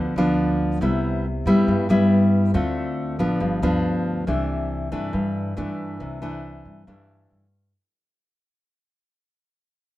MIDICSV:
0, 0, Header, 1, 3, 480
1, 0, Start_track
1, 0, Key_signature, 0, "major"
1, 0, Tempo, 431965
1, 907, Time_signature, 4, 2, 24, 8
1, 11080, End_track
2, 0, Start_track
2, 0, Title_t, "Nylon-string guitar"
2, 0, Program_c, 0, 24
2, 0, Note_on_c, 0, 50, 51
2, 0, Note_on_c, 0, 53, 54
2, 0, Note_on_c, 0, 59, 54
2, 0, Note_on_c, 0, 62, 58
2, 152, Note_off_c, 0, 53, 0
2, 153, Note_off_c, 0, 59, 0
2, 155, Note_off_c, 0, 62, 0
2, 196, Note_on_c, 0, 53, 66
2, 200, Note_on_c, 0, 59, 60
2, 202, Note_on_c, 0, 62, 64
2, 873, Note_off_c, 0, 53, 0
2, 875, Note_off_c, 0, 59, 0
2, 875, Note_off_c, 0, 62, 0
2, 883, Note_off_c, 0, 50, 0
2, 905, Note_on_c, 0, 48, 44
2, 910, Note_on_c, 0, 55, 46
2, 911, Note_on_c, 0, 59, 51
2, 919, Note_on_c, 0, 64, 53
2, 1384, Note_off_c, 0, 55, 0
2, 1386, Note_off_c, 0, 59, 0
2, 1390, Note_off_c, 0, 64, 0
2, 1631, Note_on_c, 0, 55, 63
2, 1636, Note_on_c, 0, 59, 61
2, 1641, Note_on_c, 0, 64, 70
2, 1842, Note_off_c, 0, 48, 0
2, 1868, Note_on_c, 0, 43, 51
2, 2070, Note_off_c, 0, 55, 0
2, 2073, Note_off_c, 0, 59, 0
2, 2073, Note_off_c, 0, 64, 0
2, 2109, Note_on_c, 0, 55, 61
2, 2114, Note_on_c, 0, 59, 65
2, 2120, Note_on_c, 0, 64, 69
2, 2789, Note_off_c, 0, 55, 0
2, 2791, Note_off_c, 0, 59, 0
2, 2794, Note_off_c, 0, 64, 0
2, 2803, Note_off_c, 0, 43, 0
2, 2824, Note_on_c, 0, 50, 48
2, 2824, Note_on_c, 0, 57, 52
2, 2829, Note_on_c, 0, 60, 50
2, 2834, Note_on_c, 0, 65, 52
2, 3505, Note_off_c, 0, 57, 0
2, 3509, Note_off_c, 0, 60, 0
2, 3511, Note_off_c, 0, 65, 0
2, 3548, Note_on_c, 0, 53, 50
2, 3555, Note_on_c, 0, 59, 55
2, 3558, Note_on_c, 0, 62, 64
2, 3761, Note_off_c, 0, 50, 0
2, 3782, Note_on_c, 0, 43, 49
2, 3989, Note_off_c, 0, 53, 0
2, 3991, Note_off_c, 0, 59, 0
2, 3993, Note_off_c, 0, 62, 0
2, 4030, Note_on_c, 0, 53, 58
2, 4036, Note_on_c, 0, 59, 58
2, 4037, Note_on_c, 0, 62, 72
2, 4709, Note_off_c, 0, 53, 0
2, 4710, Note_off_c, 0, 59, 0
2, 4712, Note_off_c, 0, 62, 0
2, 4719, Note_off_c, 0, 43, 0
2, 4746, Note_on_c, 0, 48, 45
2, 4750, Note_on_c, 0, 52, 43
2, 4752, Note_on_c, 0, 57, 40
2, 4757, Note_on_c, 0, 62, 52
2, 5428, Note_off_c, 0, 52, 0
2, 5430, Note_off_c, 0, 57, 0
2, 5433, Note_off_c, 0, 62, 0
2, 5464, Note_on_c, 0, 52, 53
2, 5471, Note_on_c, 0, 57, 49
2, 5473, Note_on_c, 0, 62, 50
2, 5681, Note_off_c, 0, 48, 0
2, 5701, Note_on_c, 0, 43, 48
2, 6146, Note_off_c, 0, 52, 0
2, 6148, Note_off_c, 0, 57, 0
2, 6150, Note_off_c, 0, 62, 0
2, 6185, Note_on_c, 0, 52, 51
2, 6190, Note_on_c, 0, 57, 54
2, 6198, Note_on_c, 0, 62, 57
2, 6639, Note_off_c, 0, 43, 0
2, 6671, Note_on_c, 0, 48, 47
2, 6867, Note_off_c, 0, 52, 0
2, 6869, Note_off_c, 0, 57, 0
2, 6873, Note_off_c, 0, 62, 0
2, 6909, Note_on_c, 0, 52, 54
2, 6916, Note_on_c, 0, 57, 54
2, 6920, Note_on_c, 0, 62, 56
2, 7589, Note_off_c, 0, 52, 0
2, 7592, Note_off_c, 0, 57, 0
2, 7594, Note_off_c, 0, 62, 0
2, 7604, Note_off_c, 0, 48, 0
2, 7635, Note_on_c, 0, 43, 51
2, 7642, Note_on_c, 0, 52, 44
2, 7642, Note_on_c, 0, 57, 44
2, 7646, Note_on_c, 0, 62, 54
2, 8277, Note_off_c, 0, 52, 0
2, 8279, Note_off_c, 0, 57, 0
2, 8281, Note_off_c, 0, 62, 0
2, 8568, Note_off_c, 0, 43, 0
2, 11080, End_track
3, 0, Start_track
3, 0, Title_t, "Upright bass"
3, 0, Program_c, 1, 32
3, 0, Note_on_c, 1, 38, 86
3, 169, Note_off_c, 1, 38, 0
3, 178, Note_on_c, 1, 38, 93
3, 857, Note_off_c, 1, 38, 0
3, 899, Note_on_c, 1, 36, 95
3, 1578, Note_off_c, 1, 36, 0
3, 1619, Note_on_c, 1, 43, 84
3, 1845, Note_off_c, 1, 43, 0
3, 1860, Note_on_c, 1, 43, 77
3, 2086, Note_off_c, 1, 43, 0
3, 2099, Note_on_c, 1, 43, 91
3, 2778, Note_off_c, 1, 43, 0
3, 2824, Note_on_c, 1, 38, 82
3, 3500, Note_off_c, 1, 38, 0
3, 3543, Note_on_c, 1, 33, 79
3, 3767, Note_off_c, 1, 33, 0
3, 3786, Note_on_c, 1, 31, 85
3, 4009, Note_off_c, 1, 31, 0
3, 4025, Note_on_c, 1, 38, 89
3, 4700, Note_off_c, 1, 38, 0
3, 4745, Note_on_c, 1, 36, 83
3, 5420, Note_off_c, 1, 36, 0
3, 5471, Note_on_c, 1, 43, 80
3, 5691, Note_off_c, 1, 43, 0
3, 5710, Note_on_c, 1, 43, 77
3, 6154, Note_off_c, 1, 43, 0
3, 6197, Note_on_c, 1, 43, 80
3, 6638, Note_off_c, 1, 43, 0
3, 6666, Note_on_c, 1, 36, 87
3, 7341, Note_off_c, 1, 36, 0
3, 7392, Note_on_c, 1, 43, 73
3, 7612, Note_off_c, 1, 43, 0
3, 8116, Note_on_c, 1, 43, 71
3, 8557, Note_off_c, 1, 43, 0
3, 11080, End_track
0, 0, End_of_file